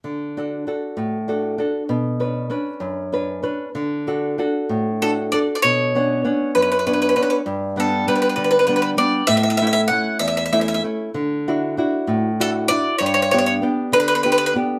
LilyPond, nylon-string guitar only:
\new Staff \with { instrumentName = "Nylon-string guitar" } { \time 6/8 \key d \major \tempo 4. = 65 d8 <d' fis' a'>8 <d' fis' a'>8 a,8 <d' fis' a'>8 <d' fis' a'>8 | b,8 <cis' d' b'>8 <cis' d' b'>8 fis,8 <cis' d' b'>8 <cis' d' b'>8 | d8 <d' fis' a'>8 <d' fis' a'>8 a,8 <d' fis' a'>8 <d' fis' a'>8 | b,8 <b cis' d'>8 <b cis' d'>8 fis,8 <b cis' d'>8 <b cis' d'>8 |
g,8 <g b d'>8 <g b d'>8 d8 <g b d'>8 <g b d'>8 | a,8 <a cis' e'>8 <a cis' e'>8 e,8 <a cis' e'>8 <a cis' e'>8 | d8 <d' e' fis'>8 <d' e' fis'>8 a,8 <d' e' fis'>8 <d' e' fis'>8 | g,8 <b d' g'>8 <b d' g'>8 d8 <b d' g'>8 <b d' g'>8 | }